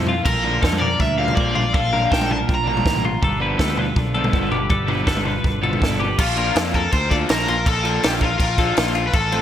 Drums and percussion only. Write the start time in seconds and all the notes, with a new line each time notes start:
0.07 floor tom
0.26 kick, floor tom, crash
0.63 kick, snare
0.73 mid tom
0.82 floor tom
1.00 kick, floor tom
1.28 floor tom, mid tom
1.37 kick, mid tom
1.56 floor tom
1.74 kick, floor tom
1.93 floor tom
2.12 kick, snare
2.21 mid tom
2.31 floor tom, mid tom
2.49 kick, floor tom
2.67 floor tom
2.77 floor tom, mid tom
2.86 kick, snare
2.95 floor tom
3.05 floor tom
3.23 kick, floor tom
3.59 kick, snare
3.68 mid tom
3.77 floor tom
3.96 kick, floor tom
4.24 floor tom, mid tom
4.33 kick, mid tom
4.52 floor tom
4.70 kick, floor tom
4.88 floor tom
5.07 kick, snare
5.17 mid tom
5.25 floor tom, mid tom
5.44 kick, floor tom
5.64 floor tom
5.73 floor tom, mid tom
5.82 kick, snare
5.91 floor tom
6.00 floor tom
6.19 kick, crash
6.37 crash
6.56 snare, crash
6.74 kick, crash
6.92 kick, crash
7.11 kick, crash
7.29 snare, crash
7.48 crash
7.66 kick, crash
7.85 crash
8.03 snare, crash
8.21 kick, crash
8.40 kick, crash
8.58 kick, crash
8.77 snare, crash
8.95 crash
9.13 kick, crash
9.32 crash